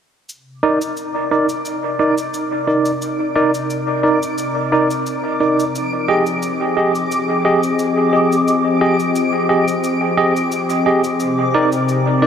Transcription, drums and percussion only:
0.29 cabasa medium
0.81 cabasa medium
0.97 cabasa medium
1.49 cabasa soft
1.65 cabasa medium
2.18 cabasa medium
2.34 cabasa medium
2.85 cabasa soft
3.02 cabasa medium
3.54 cabasa soft
3.70 cabasa medium
4.23 cabasa medium
4.38 cabasa medium
4.90 cabasa medium
5.06 cabasa medium
5.60 cabasa soft
5.75 cabasa medium
6.26 cabasa soft
6.42 cabasa medium
6.95 cabasa soft
7.11 cabasa medium
7.63 cabasa soft
7.79 cabasa medium
8.32 cabasa medium
8.48 cabasa medium
9.00 cabasa soft
9.15 cabasa medium
9.68 cabasa soft
9.84 cabasa medium
10.36 cabasa medium
10.52 cabasa medium
10.70 cabasa soft
11.04 cabasa soft
11.20 cabasa soft
11.72 cabasa soft
11.89 cabasa medium

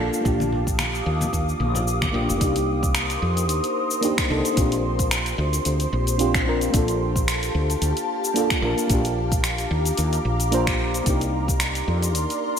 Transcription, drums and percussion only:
0.13 shaker medium
0.25 kick loud
0.25 shaker medium
0.40 high conga medium
0.40 shaker soft
0.52 low conga medium
0.67 kick medium
0.67 shaker medium
0.79 finger snap medium
0.79 high conga medium
0.79 shaker soft
0.95 shaker soft
1.21 high conga medium
1.21 low conga medium
1.21 shaker medium
1.33 kick medium
1.33 shaker medium
1.49 shaker soft
1.61 high conga medium
1.75 low conga loud
1.75 shaker medium
1.88 shaker medium
2.02 finger snap medium
2.02 kick loud
2.02 high conga medium
2.02 shaker soft
2.30 shaker medium
2.41 kick loud
2.41 open hi-hat medium
2.41 shaker medium
2.56 open hi-hat soft
2.56 shaker soft
2.83 kick loud
2.83 shaker medium
2.95 finger snap medium
2.95 open hi-hat medium
2.95 shaker medium
3.10 open hi-hat soft
3.10 shaker soft
3.37 open hi-hat soft
3.37 shaker medium
3.49 open hi-hat medium
3.49 shaker medium
3.64 open hi-hat soft
3.64 shaker soft
3.91 shaker medium
4.03 open hi-hat medium
4.03 shaker medium
4.18 finger snap medium
4.18 kick loud
4.18 open hi-hat soft
4.18 shaker soft
4.45 open hi-hat soft
4.45 shaker medium
4.57 kick loud
4.57 open hi-hat medium
4.57 shaker medium
4.72 open hi-hat soft
4.72 shaker soft
4.99 kick medium
4.99 open hi-hat soft
4.99 shaker medium
5.11 finger snap medium
5.11 open hi-hat medium
5.11 shaker medium
5.26 open hi-hat soft
5.26 shaker soft
5.53 open hi-hat soft
5.53 shaker medium
5.65 open hi-hat medium
5.65 shaker medium
5.80 open hi-hat soft
5.80 shaker soft
6.07 open hi-hat soft
6.07 shaker medium
6.19 open hi-hat medium
6.19 shaker medium
6.34 finger snap medium
6.34 kick loud
6.34 open hi-hat soft
6.34 shaker soft
6.61 open hi-hat soft
6.61 shaker medium
6.74 kick loud
6.74 open hi-hat medium
6.74 shaker medium
6.88 open hi-hat soft
6.88 shaker soft
7.16 kick loud
7.16 shaker medium
7.28 finger snap medium
7.28 open hi-hat medium
7.28 shaker medium
7.43 open hi-hat soft
7.43 shaker soft
7.70 open hi-hat soft
7.70 shaker medium
7.82 open hi-hat medium
7.82 shaker medium
7.97 open hi-hat soft
7.97 shaker soft
8.24 shaker medium
8.36 open hi-hat medium
8.36 shaker medium
8.50 finger snap medium
8.50 kick loud
8.50 open hi-hat soft
8.50 shaker soft
8.78 open hi-hat soft
8.78 shaker medium
8.90 kick loud
8.90 open hi-hat medium
8.90 shaker medium
9.05 open hi-hat soft
9.05 shaker soft
9.32 kick loud
9.32 open hi-hat soft
9.32 shaker medium
9.44 finger snap medium
9.44 open hi-hat medium
9.44 shaker medium
9.58 open hi-hat soft
9.58 shaker soft
9.85 open hi-hat soft
9.85 shaker medium
9.97 open hi-hat medium
9.97 shaker medium
10.13 open hi-hat soft
10.13 shaker soft
10.40 open hi-hat soft
10.40 shaker medium
10.52 open hi-hat medium
10.52 shaker medium
10.67 finger snap medium
10.67 kick loud
10.67 open hi-hat soft
10.67 shaker soft
10.94 open hi-hat soft
10.94 shaker medium
11.06 kick loud
11.06 open hi-hat medium
11.06 shaker medium
11.21 open hi-hat soft
11.21 shaker soft
11.48 kick loud
11.48 shaker medium
11.60 finger snap medium
11.60 open hi-hat medium
11.60 shaker medium
11.75 open hi-hat soft
11.75 shaker soft
12.03 open hi-hat soft
12.03 shaker medium
12.15 open hi-hat medium
12.15 shaker medium
12.30 open hi-hat soft
12.30 shaker soft

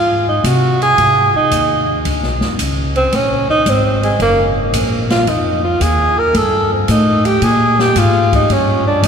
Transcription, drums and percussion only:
0.44 hi-hat pedal medium
0.44 ride medium
0.82 ride medium
0.98 ride medium
1.51 hi-hat pedal medium
1.51 ride medium
2.05 ride medium
2.23 snare soft
2.41 snare soft
2.59 hi-hat pedal medium
2.59 ride medium
2.96 ride soft
3.12 ride medium
3.66 hi-hat pedal medium
3.66 ride medium
4.03 ride soft
4.20 ride medium
4.73 hi-hat pedal medium
4.73 ride medium
5.10 snare medium
5.10 ride soft
5.27 ride medium
5.81 hi-hat pedal medium
5.81 ride medium
6.35 ride medium
6.88 hi-hat pedal medium
6.88 ride medium
7.25 ride medium
7.42 ride medium
7.79 snare medium
7.96 hi-hat pedal medium
7.96 ride medium
8.33 kick medium
8.33 ride medium
8.50 ride medium
9.03 hi-hat pedal medium
9.03 ride medium

